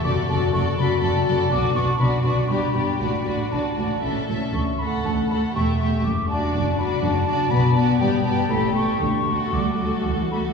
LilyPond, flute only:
\new Staff \with { instrumentName = "Flute" } { \time 3/4 \key d \major \tempo 4 = 120 d'''8 a''8 cis'''8 b''8 a''4 | d'''8 cis'''8 b''8 cis'''8 b''8 b''8 | b''4 a''4 r4 | cis'''8 b''8 a''8 b''8 cis'''8 cis'''8 |
d'''8 a''4 b''8 a''4 | b''8 a''8 g''8 a''8 b''8 cis'''8 | cis'''4 d'''4 r8 b''8 | }